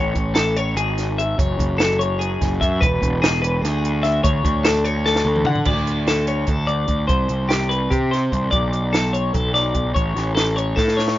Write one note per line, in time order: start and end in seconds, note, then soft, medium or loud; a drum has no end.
0.00 0.15 A1 loud
0.00 0.34 C#5 medium
0.15 0.73 A1 medium
0.15 kick medium
0.15 closed hi-hat medium
0.35 0.57 A4 medium
0.35 snare loud
0.35 closed hi-hat medium
0.56 0.76 C#5 medium
0.56 closed hi-hat medium
0.75 1.34 G#1 medium
0.75 1.18 G#4 medium
0.75 closed hi-hat medium
0.98 snare soft
0.98 closed hi-hat medium
1.18 1.38 E5 medium
1.18 closed hi-hat medium
1.38 1.57 F#1 medium
1.38 1.79 C#5 medium
1.38 kick loud
1.38 closed hi-hat medium
1.59 2.37 F#1 medium
1.59 kick medium
1.59 closed hi-hat medium
1.78 1.99 A4 medium
1.78 snare loud
1.78 closed hi-hat medium
1.99 2.20 C#5 medium
1.99 closed hi-hat medium
2.19 2.61 G#4 medium
2.19 closed hi-hat medium
2.41 2.60 F#1 loud
2.41 kick medium
2.41 snare soft
2.41 closed hi-hat medium
2.61 2.80 F#2 medium
2.61 2.82 E5 medium
2.61 kick medium
2.61 closed hi-hat medium
2.81 3.01 E1 loud
2.81 3.22 B4 medium
2.81 kick loud
2.81 closed hi-hat medium
3.02 3.59 E1 medium
3.02 kick medium
3.02 closed hi-hat medium
3.22 3.41 G#4 medium
3.22 snare loud
3.22 closed hi-hat medium
3.42 3.62 B4 medium
3.42 closed hi-hat medium
3.62 4.20 D2 medium
3.62 4.03 G#4 medium
3.62 snare soft
3.62 closed hi-hat medium
3.85 closed hi-hat medium
4.03 4.23 E5 medium
4.03 snare soft
4.03 closed hi-hat medium
4.24 4.43 D2 medium
4.24 4.65 C#5 medium
4.24 kick loud
4.24 closed hi-hat loud
4.44 5.22 D2 medium
4.44 kick medium
4.44 closed hi-hat medium
4.65 4.85 A4 medium
4.65 snare loud
4.65 closed hi-hat medium
4.85 5.05 C#5 medium
4.85 closed hi-hat medium
5.06 5.46 A4 medium
5.06 snare medium
5.16 snare medium
5.25 5.44 D2 loud
5.36 mid tom medium
5.44 5.64 D3 medium
5.44 5.66 F#5 medium
5.44 mid tom loud
5.55 floor tom medium
5.65 6.44 D2 medium
5.65 6.07 D5 medium
5.65 kick medium
5.65 crash medium
5.87 closed hi-hat medium
6.07 6.28 A4 medium
6.07 snare medium
6.07 closed hi-hat medium
6.27 6.48 C#5 medium
6.27 closed hi-hat medium
6.47 6.85 D2 medium
6.47 6.69 A4 medium
6.47 kick medium
6.47 closed hi-hat medium
6.67 7.07 D5 medium
6.67 closed hi-hat medium
6.88 7.07 D2 medium
6.88 kick medium
6.88 closed hi-hat medium
7.08 7.28 C2 medium
7.08 7.50 C5 medium
7.08 kick loud
7.08 closed hi-hat medium
7.29 7.87 C2 medium
7.29 closed hi-hat medium
7.49 7.70 G4 medium
7.49 snare medium
7.49 closed hi-hat medium
7.69 7.91 B4 medium
7.69 closed hi-hat medium
7.90 8.28 C3 medium
7.90 8.12 G4 medium
7.90 kick medium
7.90 closed hi-hat medium
8.11 8.51 C5 medium
8.11 snare soft
8.11 closed hi-hat medium
8.32 8.51 C2 medium
8.32 kick medium
8.32 closed hi-hat medium
8.51 9.30 B1 medium
8.51 8.93 D5 medium
8.51 kick medium
8.51 closed hi-hat medium
8.73 closed hi-hat medium
8.93 9.14 A4 medium
8.93 snare medium
8.93 closed hi-hat medium
9.13 9.33 C#5 medium
9.13 closed hi-hat medium
9.33 9.72 B1 medium
9.33 9.54 A4 medium
9.33 kick medium
9.33 closed hi-hat medium
9.54 9.94 D5 medium
9.54 snare soft
9.54 closed hi-hat medium
9.74 9.94 B1 medium
9.74 kick medium
9.74 closed hi-hat medium
9.94 10.14 A1 loud
9.94 10.34 C#5 medium
9.94 kick medium
9.94 closed hi-hat medium
10.15 10.73 A1 medium
10.15 snare soft
10.15 closed hi-hat medium
10.35 10.56 A4 medium
10.35 snare medium
10.35 closed hi-hat medium
10.56 10.77 C#5 medium
10.56 closed hi-hat medium
10.76 11.15 A2 medium
10.76 10.98 A4 medium
10.76 kick medium
10.76 snare medium
10.88 snare soft
10.97 11.18 C#5 medium
10.97 snare medium
11.08 snare medium